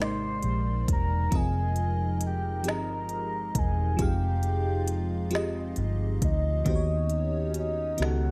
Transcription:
0.00 0.40 G#1 loud
0.00 1.29 C3 medium
0.00 1.29 G#3 medium
0.00 1.34 G#3 medium
0.00 1.29 A#3 medium
0.00 1.34 D#4 medium
0.00 1.34 G4 medium
0.00 1.34 A#4 medium
0.00 3.95 A#4 medium
0.00 1.34 C5 medium
0.00 1.15 D5 medium
0.00 0.86 C6 loud
0.00 snare loud
0.43 0.84 A#1 medium
0.43 closed hi-hat soft
0.88 1.29 E1 medium
0.88 kick loud
0.88 closed hi-hat medium
0.92 1.38 A#5 loud
1.31 2.66 F1 loud
1.31 2.47 F3 medium
1.31 6.62 F3 medium
1.31 6.62 G#3 medium
1.31 2.47 C4 medium
1.31 6.62 D#4 medium
1.31 2.48 F4 medium
1.31 2.48 G#4 medium
1.31 kick loud
1.31 closed hi-hat medium
1.35 2.49 D#5 medium
1.35 2.23 G#5 loud
1.76 closed hi-hat soft
2.21 closed hi-hat medium
2.26 2.71 G5 loud
2.63 3.51 G1 medium
2.63 3.80 F3 medium
2.63 3.80 C4 medium
2.63 3.81 G4 medium
2.63 3.82 G#4 medium
2.63 closed hi-hat medium
2.68 3.82 D#5 medium
2.68 3.60 A#5 loud
2.68 snare loud
3.09 closed hi-hat soft
3.55 3.95 E1 medium
3.55 4.04 G#5 medium
3.55 kick loud
3.55 closed hi-hat medium
3.97 5.73 F1 loud
3.97 5.13 F3 medium
3.97 5.14 C4 medium
3.97 6.63 F4 medium
3.97 5.14 G4 medium
3.97 5.15 G#4 medium
3.97 kick loud
3.97 closed hi-hat medium
4.02 5.16 F5 medium
4.02 5.34 G5 medium
4.43 closed hi-hat soft
4.88 closed hi-hat medium
5.30 6.47 F3 medium
5.30 6.47 C4 medium
5.30 6.48 G4 medium
5.30 6.48 G#4 medium
5.30 closed hi-hat medium
5.35 6.49 D#5 medium
5.35 snare loud
5.76 6.18 G1 medium
5.76 closed hi-hat soft
6.22 6.62 D2 loud
6.22 7.52 D#5 loud
6.22 kick loud
6.22 closed hi-hat medium
6.64 7.95 D#2 loud
6.64 7.80 D#3 medium
6.64 8.31 D#3 medium
6.64 7.81 B3 medium
6.64 8.31 B3 medium
6.64 8.31 C#4 medium
6.64 8.31 D#4 medium
6.64 7.81 F#4 medium
6.64 7.82 G4 medium
6.64 kick loud
6.64 closed hi-hat medium
6.69 6.74 C5 medium
6.75 7.86 C#5 medium
7.10 closed hi-hat soft
7.54 closed hi-hat medium
7.59 8.04 D#5 loud
7.97 8.31 C#2 medium
7.97 8.31 D#3 medium
7.97 8.31 B3 medium
7.97 8.31 F#4 medium
7.97 8.31 G4 medium
7.97 closed hi-hat medium
8.02 8.31 A4 medium
8.02 8.31 F#5 loud
8.02 snare loud

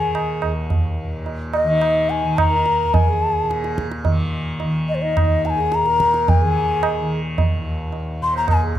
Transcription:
0.00 0.42 D#2 medium
0.00 1.03 A#2 medium
0.00 1.64 D#3 medium
0.00 0.52 G#4 medium
0.00 0.41 G#5 medium
0.15 tabla na medium
0.42 2.83 D#2 medium
0.42 tabla na medium
0.70 tabla tin medium
0.70 tabla ge medium
1.03 3.43 A#2 medium
1.26 tabla tin medium
1.53 2.11 D#5 medium
1.53 tabla na medium
1.64 2.23 D#3 medium
1.64 2.54 D#4 medium
1.81 tabla na medium
2.10 2.39 G#5 medium
2.23 4.04 D#3 medium
2.37 2.96 A#5 medium
2.37 tabla na medium
2.37 tabla ge medium
2.50 3.09 A#4 medium
2.66 tabla te medium
2.84 5.24 D#2 medium
2.94 3.78 G#5 medium
2.94 tabla tin medium
2.94 tabla ge medium
3.07 3.87 G#4 medium
3.44 5.82 A#2 medium
3.51 tabla te medium
3.64 tabla te medium
3.78 tabla ke medium
3.91 tabla te medium
4.04 4.63 D#3 medium
4.04 tabla tin medium
4.04 tabla ge medium
4.60 6.40 D#3 medium
4.60 tabla tin medium
4.89 4.96 D#5 medium
4.95 5.04 C5 medium
5.02 5.13 D#4 medium
5.02 5.47 D#5 medium
5.15 5.59 D#4 medium
5.15 tabla na medium
5.15 tabla ge medium
5.24 7.60 D#2 medium
5.45 5.51 A#5 medium
5.45 tabla te medium
5.50 5.76 G#5 medium
5.57 5.86 G#4 medium
5.72 6.30 A#5 loud
5.72 tabla te medium
5.82 8.21 A#2 medium
5.82 6.42 A#4 medium
5.82 tabla te medium
6.00 tabla ke medium
6.14 tabla te medium
6.28 7.11 G#5 medium
6.28 tabla tin medium
6.28 tabla ge medium
6.40 7.00 D#3 medium
6.40 7.20 G#4 medium
6.83 tabla na medium
7.00 8.79 D#3 medium
7.38 tabla tin medium
7.38 tabla ge medium
7.61 8.79 D#2 medium
7.92 tabla tin medium
8.21 8.79 A#2 medium
8.21 8.34 C6 medium
8.34 8.48 C5 medium
8.34 8.49 A#5 medium
8.47 8.62 A#4 medium
8.47 8.62 G#5 medium
8.47 tabla na medium
8.47 tabla ge medium
8.61 8.74 G#4 medium
8.75 tabla ge medium

